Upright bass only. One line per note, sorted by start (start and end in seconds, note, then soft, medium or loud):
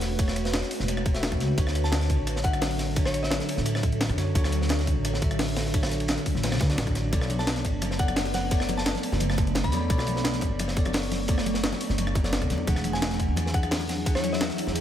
0.00 0.61 E1 medium
0.80 1.31 E1 medium
1.32 1.40 A1 medium
1.40 1.56 C#2 medium
1.58 2.19 D2 loud
2.19 3.39 A1 medium
3.57 4.09 A1 loud
4.09 4.18 D2 medium
4.18 4.33 F#2 loud
4.35 4.96 D2 loud
4.96 6.16 A1 loud
6.35 6.61 A1 medium
6.61 6.76 D2 medium
6.78 7.11 A1 loud
7.13 7.74 B1 loud
7.74 8.93 F#1 medium
9.12 9.64 F#1 loud
9.64 9.73 B1 medium
9.73 9.88 E2 medium
9.90 10.51 B1 loud
10.51 11.71 F#1 loud
11.90 12.41 F#1 loud
12.42 12.52 B1 medium
12.50 12.66 E2 medium
12.67 13.30 E1 loud
13.28 14.48 E2 medium
14.67 14.81 E2 medium